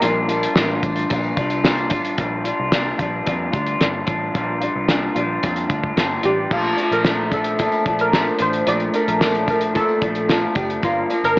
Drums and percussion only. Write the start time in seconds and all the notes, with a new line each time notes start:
0.02 closed hi-hat, tambourine
0.29 closed hi-hat, tambourine
0.43 closed hi-hat
0.56 snare, tambourine
0.83 kick, closed hi-hat, tambourine
0.96 closed hi-hat, tambourine
1.10 kick, closed hi-hat, tambourine
1.23 tambourine
1.37 kick, closed hi-hat
1.50 closed hi-hat, tambourine
1.65 snare, tambourine
1.77 closed hi-hat
1.90 kick, closed hi-hat, tambourine
2.04 closed hi-hat, tambourine
2.18 kick, closed hi-hat
2.45 closed hi-hat
2.72 snare, closed hi-hat
2.99 kick, closed hi-hat
3.27 kick, closed hi-hat
3.53 kick, closed hi-hat
3.67 closed hi-hat
3.81 snare, closed hi-hat
4.07 kick, closed hi-hat
4.35 kick, closed hi-hat
4.62 closed hi-hat
4.89 snare, closed hi-hat
5.16 closed hi-hat
5.43 kick, closed hi-hat
5.56 closed hi-hat
5.70 kick, closed hi-hat
5.83 kick
5.97 snare, closed hi-hat
6.23 closed hi-hat
6.51 kick, crash, tambourine
6.78 closed hi-hat, tambourine
6.92 closed hi-hat
7.04 snare, tambourine
7.32 kick, closed hi-hat, tambourine
7.44 closed hi-hat
7.59 kick, closed hi-hat, tambourine
7.72 closed hi-hat, tambourine
7.86 kick, closed hi-hat
7.99 closed hi-hat
8.13 snare, tambourine
8.39 closed hi-hat, tambourine
8.53 closed hi-hat
8.67 closed hi-hat, tambourine
8.80 closed hi-hat
8.94 closed hi-hat, tambourine
9.08 closed hi-hat, tambourine
9.21 snare, tambourine
9.35 closed hi-hat
9.48 kick, closed hi-hat, tambourine
9.61 closed hi-hat
9.75 kick, closed hi-hat, tambourine
9.88 tambourine
10.02 kick, closed hi-hat
10.15 closed hi-hat
10.29 snare, tambourine
10.55 kick, closed hi-hat, tambourine
10.70 closed hi-hat
10.83 kick, closed hi-hat, tambourine
11.10 closed hi-hat, tambourine
11.24 closed hi-hat, tambourine